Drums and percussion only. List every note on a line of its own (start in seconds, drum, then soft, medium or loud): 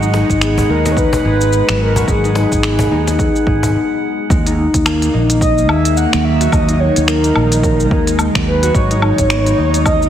0.03 cabasa soft
0.14 cajon slap medium
0.30 kick medium
0.30 cabasa medium
0.41 finger snap medium
0.41 cabasa medium
0.58 cajon bass medium
0.58 cabasa soft
0.86 cajon slap medium
0.86 cabasa medium
0.97 kick medium
0.97 cabasa soft
1.13 cajon bass medium
1.13 cabasa soft
1.41 cabasa medium
1.53 cabasa medium
1.69 finger snap medium
1.69 cabasa soft
1.96 cajon bass medium
1.96 cabasa medium
2.08 kick loud
2.08 cabasa soft
2.24 cajon slap soft
2.24 cabasa soft
2.35 cajon slap medium
2.52 kick medium
2.52 cabasa medium
2.63 finger snap medium
2.63 cabasa medium
2.79 cajon bass medium
2.79 cabasa soft
3.07 cajon slap medium
3.07 cabasa medium
3.19 kick loud
3.19 cabasa medium
3.36 cabasa soft
3.47 kick loud
3.63 cajon bass medium
3.63 cabasa medium
4.30 kick loud
4.30 cabasa medium
4.47 closed hi-hat soft
4.47 cabasa soft
4.74 kick medium
4.74 closed hi-hat medium
4.74 cabasa medium
4.86 finger snap medium
4.86 cabasa medium
4.86 low woodblock medium
5.02 closed hi-hat soft
5.02 cabasa soft
5.30 closed hi-hat medium
5.30 cabasa medium
5.41 kick loud
5.41 cabasa medium
5.58 cabasa soft
5.69 low woodblock medium
5.85 closed hi-hat medium
5.85 cabasa medium
5.97 cabasa medium
6.13 finger snap medium
6.13 cabasa soft
6.41 closed hi-hat medium
6.41 cabasa medium
6.52 kick loud
6.52 cabasa medium
6.52 low woodblock medium
6.69 closed hi-hat soft
6.69 cabasa soft
6.96 closed hi-hat medium
6.96 cabasa medium
7.08 finger snap medium
7.08 cabasa medium
7.24 closed hi-hat soft
7.24 cabasa soft
7.36 low woodblock medium
7.52 closed hi-hat medium
7.52 cabasa medium
7.63 kick loud
7.63 cabasa medium
7.80 cabasa soft
7.91 kick loud
8.07 closed hi-hat medium
8.07 cabasa medium
8.19 cabasa medium
8.19 low woodblock medium
8.35 finger snap medium
8.35 kick medium
8.35 cabasa soft
8.63 closed hi-hat medium
8.63 cabasa medium
8.75 kick loud
8.75 cabasa medium
8.91 closed hi-hat soft
8.91 cabasa soft
9.02 low woodblock medium
9.18 kick medium
9.18 closed hi-hat medium
9.18 cabasa medium
9.30 finger snap medium
9.30 cabasa medium
9.46 closed hi-hat soft
9.46 cabasa soft
9.74 closed hi-hat medium
9.74 cabasa medium
9.86 kick loud
9.86 cabasa medium
9.86 low woodblock medium
10.02 cabasa soft